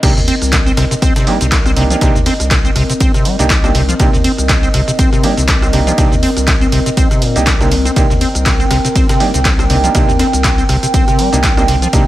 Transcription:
0.03 C2 C3 A#3 C4 D4 D#4 G4 A#4 D#5, kick, cross-stick, closed hi-hat, crash, ride, shaker
0.17 D#2 C3, snare, shaker
0.28 C4, closed hi-hat, open hi-hat
0.42 C2, cross-stick, closed hi-hat, shaker
0.52 C3, kick, snare, clap, closed hi-hat, ride, shaker
0.66 C4, closed hi-hat, shaker
0.77 C2 C3, cross-stick, snare, closed hi-hat, open hi-hat
0.91 C3, snare, closed hi-hat, shaker
1.02 C2 C4, kick, snare, closed hi-hat, ride, shaker
1.16 C3, cross-stick, snare, closed hi-hat, shaker
1.27 G3 A#3 D4 D#4 G4, snare, open hi-hat
1.41 C2 C3, snare, closed hi-hat, shaker
1.52 kick, snare, clap, closed hi-hat, ride, shaker
1.66 C4, cross-stick, snare, closed hi-hat, shaker
1.76 C3 A#3 D4 D#4 G4, closed hi-hat, open hi-hat
1.90 F3 A#3 D4 D#4 G4, closed hi-hat, shaker
2.01 C2 C3 A#3 D4 D#4 G4, kick, cross-stick, closed hi-hat, ride, shaker
2.15 D#2 C3, shaker
2.26 C4, snare, closed hi-hat, open hi-hat
2.40 C2, cross-stick, snare, closed hi-hat, shaker
2.51 C3, kick, snare, clap, closed hi-hat, ride, shaker
2.65 C4, closed hi-hat, shaker
2.76 C2 C3, cross-stick, closed hi-hat, open hi-hat
2.90 C3, closed hi-hat, shaker
3.00 C2 C4, kick, closed hi-hat, ride, shaker
3.14 C3, cross-stick, closed hi-hat, shaker
3.25 G3, closed hi-hat, open hi-hat
3.39 C2 C3 A#3 D4 D#4 G4, closed hi-hat, shaker
3.50 kick, snare, clap, closed hi-hat, ride, shaker
3.64 A#3 C4 D4 D#4 G4, cross-stick, snare, closed hi-hat, shaker
3.75 C3, snare, closed hi-hat, open hi-hat
3.89 F3, snare, closed hi-hat, shaker
4.00 C2 C3 A#3 D4 D#4 G4, kick, cross-stick, closed hi-hat, ride, shaker
4.13 D#2 C3, snare, shaker
4.24 C4, closed hi-hat, open hi-hat
4.38 C2, cross-stick, closed hi-hat, shaker
4.49 C3, kick, snare, clap, closed hi-hat, ride, shaker
4.63 C4, closed hi-hat, shaker
4.74 C2 C3, cross-stick, closed hi-hat, open hi-hat
4.88 C3, closed hi-hat, shaker
4.99 C2 C4, kick, closed hi-hat, ride, shaker
5.13 C3, cross-stick, closed hi-hat, shaker
5.24 G3 A#3 D4 D#4 G4, closed hi-hat, open hi-hat
5.37 C2 C3, snare, closed hi-hat, shaker
5.48 kick, snare, clap, closed hi-hat, ride, shaker
5.62 C4, cross-stick, snare, closed hi-hat, shaker
5.73 C3 A#3 D4 D#4 G4, closed hi-hat, open hi-hat
5.87 F3 A#3 D4 D#4 G4, closed hi-hat, shaker
5.98 C2 C3 A#3 D4 D#4 G4, kick, cross-stick, closed hi-hat, ride, shaker
6.12 D#2 C3, shaker
6.23 C4, open hi-hat
6.37 C2, cross-stick, snare, closed hi-hat, shaker
6.47 C3, kick, snare, clap, closed hi-hat, ride, shaker
6.61 C4, closed hi-hat, shaker
6.72 C2 C3, closed hi-hat, open hi-hat
6.86 C3, closed hi-hat, shaker
6.97 C2 C4, kick, closed hi-hat, ride, shaker
7.11 C3, cross-stick, closed hi-hat, shaker
7.22 A#2, closed hi-hat, open hi-hat
7.36 C2 C3 A#3 D4 D#4 G4, closed hi-hat, shaker
7.47 C2, kick, snare, clap, closed hi-hat, ride, shaker
7.60 C3 A#3 D4 D#4 G4, cross-stick, snare, closed hi-hat, shaker
7.71 D#3, snare, closed hi-hat, open hi-hat
7.85 C4, snare, closed hi-hat, shaker
7.96 C2 C3 A#3 D4 D#4 G4 G5, kick, cross-stick, closed hi-hat, ride, shaker
8.10 D#2 C3, snare, shaker
8.21 C4, closed hi-hat, open hi-hat
8.35 C2, cross-stick, closed hi-hat, shaker
8.46 C3, kick, snare, clap, closed hi-hat, ride, shaker
8.60 C4, closed hi-hat, shaker
8.71 C2 C3, cross-stick, snare, closed hi-hat, open hi-hat
8.85 C3, snare, closed hi-hat, shaker
8.96 C2 C4, kick, snare, closed hi-hat, ride, shaker
9.09 C3, cross-stick, snare, closed hi-hat, shaker
9.20 G3 A#3 D4 D#4 G4, snare, open hi-hat
9.34 C2 C3, snare, closed hi-hat, shaker
9.45 kick, snare, clap, closed hi-hat, ride, shaker
9.59 C4, cross-stick, snare, closed hi-hat, shaker
9.70 C3 A#3 D4 D#4 G4, closed hi-hat, open hi-hat
9.84 F3 A#3 D4 D#4 G4, closed hi-hat, shaker
9.95 C2 C3 A#3 D4 D#4 G4, kick, cross-stick, closed hi-hat, ride, shaker
10.08 D#2 C3, shaker
10.19 C4, snare, closed hi-hat, open hi-hat
10.33 C2, cross-stick, snare, closed hi-hat, shaker
10.44 C3, kick, snare, clap, closed hi-hat, ride, shaker
10.58 C4, closed hi-hat, shaker
10.69 C2 C3, cross-stick, closed hi-hat, open hi-hat
10.83 C3, closed hi-hat, shaker
10.94 C2 C4, kick, closed hi-hat, ride, shaker
11.08 C3, cross-stick, closed hi-hat, shaker
11.19 G3, closed hi-hat, open hi-hat
11.32 C2 C3 A#3 D4 D#4 G4, closed hi-hat, shaker
11.43 kick, snare, clap, closed hi-hat, ride, shaker
11.57 A#3 C4 D4 D#4 G4, cross-stick, snare, closed hi-hat, shaker
11.68 C3, snare, closed hi-hat, open hi-hat
11.82 F3, snare, closed hi-hat, shaker
11.93 C2 C3 A#3 D4 D#4 G4, kick, cross-stick, closed hi-hat, ride, shaker

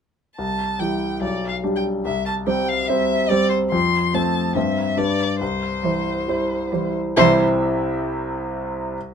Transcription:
0.37 C2 A5
0.79 E3 G3 E4 G4 G5
1.21 B1 D5
1.49 F5
1.63 G3 D4 G4
1.76 G5
2.05 C2 E5
2.26 A5
2.47 G3 C4 C5 G5
2.69 F5
2.87 G3 C4 C5 E5
3.29 G3 C4 C5 D5
3.50 C5
3.71 F2 C6
4.14 A3 C4 C5 A5
4.55 G2 G3 C4 C5 E5
4.97 G2 G3 D4 B4 D5
5.41 C2 C5
5.83 E3 G3 E4 C5
6.28 G3 E4 C5
6.72 E3 G3 E4 C5
7.17 C2 C3 E3 G3 E4 C5 E5

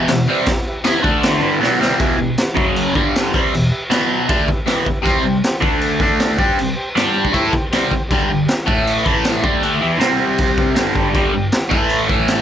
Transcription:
Already playing: E3
0.08 E2 B2 G4 B4 E5, snare, crash
0.28 C3 G3 C4 G4 B4 E5
0.46 G4 B4 E5, kick, snare, crash
0.67 G4 B4 E5
0.84 E3 B3 E4 G4 B4, snare, crash
0.89 E5
1.02 D3 A3 D4 A4 D5, kick
1.23 snare, crash
1.41 G2 D3 G3 E4 G4 B4
1.60 B2 F#3 B3, snare
1.79 C3 G3 C4 E4 G4, snare
1.84 B4
1.99 E2 B2 E3 E4 G4 B4, kick, crash
2.17 E2 B2 E4 G4 B4
2.38 E4 G4 B4, snare, crash
2.55 F#2 C#3 F#3 C#4 F#4 C#5, kick
2.76 crash
2.94 G2 D3 G3 D4 G4 D5, kick
3.16 snare, crash
3.32 C3 G3 C4 G4 B4 E5, kick
3.54 E2 B2, crash
3.71 G4 B4 E5
3.88 B2 F#3 B3 F#4 B4 F#5, snare, crash
4.10 F#4 B4 F#5
4.28 D3 A3 D4 G4 B4 E5, kick, crash
4.46 G4 B4 E5, muted overdriven electric guitar stroke, kick
4.65 E2 B2 E3 G4 B4 E5 G5, snare, crash
4.85 G4 B4 E5, muted overdriven electric guitar stroke, kick
5.02 C3 G3 C4 G4 C5, kick
5.06 G5, crash
5.23 C3 G3 G4 C5 G5
5.44 G4 C5 G5, snare, crash
5.61 D3 A3 D4 A4, kick
5.66 D5 A5
5.82 crash
6.00 D3 A3 D4 A4 D5 A5, kick
6.19 A4 D5 A5, snare, crash
6.38 G3 D4 G4 C5 G5, kick
6.59 C3 G3, crash
6.76 G4 C5 G5
6.96 G3 D4 G4 D5 G5, snare, crash
7.14 G4 D5 G5
7.25 kick
7.33 A3 E4 G4 A4 C5 G5, kick, crash
7.51 G4 C5 G5, muted overdriven electric guitar stroke, kick
7.70 C3 G3 G4 C5 G5, snare, crash
7.75 C4
7.88 G4 C5 G5, kick
7.93 muted overdriven electric guitar stroke
8.08 G2 D3 G4 D5 G5, kick, crash
8.13 G3
8.26 G2 G4 D5 G5
8.30 D3
8.45 G4 D5 G5, snare, crash
8.66 A2 E3 A3 A4 E5 A5, kick
8.87 crash
9.03 A2 E3 A3 A4 E5 A5, kick
9.24 A4 E5 A5, snare, crash
9.42 D3 A3 D4 G4 D5 G5, kick
9.62 D3 A3 D4, crash
9.81 E3 B3 E4 G4 D5 G5
9.98 C3 G3 C4 G4 C5, snare, crash
10.03 G5
10.19 G4 C5 F#5
10.38 G4 C5, kick, crash
10.42 G5
10.57 G4 C5 G5, kick
10.75 G2 D3 G3 G4 D5 G5, snare, crash
10.96 G4 D5 G5, kick
11.13 G2 D3 G3 G4 D5 G5, kick, crash
11.33 G2 D3 G4 D5 G5
11.52 G4 D5 G5, snare, crash
11.70 A2 E3 A3 A4 E5 A5, kick
11.90 crash
12.08 A2 E3 A3 A4 E5 A5, kick
12.28 A4 E5 A5, snare, crash

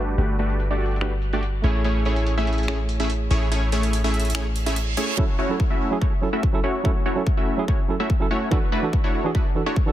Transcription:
Already playing: G1 G3 A3 D4 F#4 G4 A4 B4
0.18 G1 A3 D4 F#4 G4 B4, closed hi-hat
0.39 A3 D4 F#4 G4 B4, closed hi-hat
0.50 closed hi-hat
0.60 closed hi-hat
0.71 A3 D4 F#4 G4 D5
0.81 closed hi-hat
0.86 closed hi-hat
0.91 closed hi-hat
0.96 closed hi-hat
1.01 A3 D4 F#4 G4 B4, finger snap, closed hi-hat
1.22 closed hi-hat
1.33 A3 D4 F#4 G4 D5, closed hi-hat
1.43 closed hi-hat
1.62 A1 A3 C#4 E4 G#4 C#5, closed hi-hat
1.66 C#5
1.84 A3 C#4 E4 G#4 C#5, closed hi-hat
2.05 A3 C#4 E4 G#4 C#5, closed hi-hat
2.16 closed hi-hat
2.27 closed hi-hat
2.38 A3 C#4 E4 G#4 E5
2.47 closed hi-hat
2.53 closed hi-hat
2.58 closed hi-hat
2.63 closed hi-hat
2.68 A3 C#4 E4 G#4 C#5, finger snap, closed hi-hat
2.89 closed hi-hat
3.00 A3 C#4 E4 G#4 E5, closed hi-hat
3.10 closed hi-hat
3.31 A1 A3 C#4 E4 G#4 C#5, closed hi-hat
3.51 A3 C#4 E4 G#4 C#5, closed hi-hat
3.72 A3 C#4 E4 G#4 C#5, closed hi-hat
3.83 closed hi-hat
3.93 closed hi-hat
4.04 A3 C#4 E4 G#4 E5
4.14 closed hi-hat
4.20 closed hi-hat
4.25 closed hi-hat
4.30 closed hi-hat
4.35 A3 C#4 E4 G#4 C#5, finger snap, closed hi-hat, reverse cymbal
4.56 closed hi-hat
4.66 A3 C#4 E4 G#4 E5, closed hi-hat
4.76 closed hi-hat
4.97 A3 C#4 E4 G#4 C#5, closed hi-hat
5.17 F#3 A3 C#4 E4 F#4 A4 C#5, kick
5.39 A3 C#4 E4 F#4 C#5
5.49 F#3 C#4 E4 A4
5.60 kick
5.70 A3 C#4 E4 F#4 E5
5.91 F#3 C#4 E4 G#4
6.01 A3 C#4 E4 F#4 C#5, kick
6.21 F#3 C#4 E4 A4
6.33 A3 C#4 E4 F#4 E5
6.43 kick
6.53 F#3 C#4 E4 A4
6.64 A3 C#4 E4 F#4 C#5
6.84 F#3 A3 C#4 E4 F#4 A4 C#5, kick
7.06 A3 C#4 E4 F#4 C#5
7.15 F#3 C#4 E4 A4
7.27 kick
7.37 A3 C#4 E4 F#4 E5
7.57 F#3 C#4 E4 G#4
7.68 A3 C#4 E4 F#4 C#5, kick
7.88 F#3 C#4 E4 A4
8.00 A3 C#4 E4 F#4 E5
8.10 kick
8.20 F#3 C#4 E4 A4
8.31 A3 C#4 E4 F#4 C#5
8.51 E3 D4 E4 F#4 A4 B4, kick
8.72 A3 D4 E4 F#4 B4
8.82 E3 D4 F#4 A4
8.93 kick
9.04 A3 D4 E4 F#4 C#5
9.24 E3 D4 F#4 G#4
9.35 A3 D4 E4 F#4 B4, kick
9.55 E3 D4 F#4 A4
9.66 A3 D4 E4 F#4 C#5
9.76 kick
9.86 E3 D4 F#4 A4

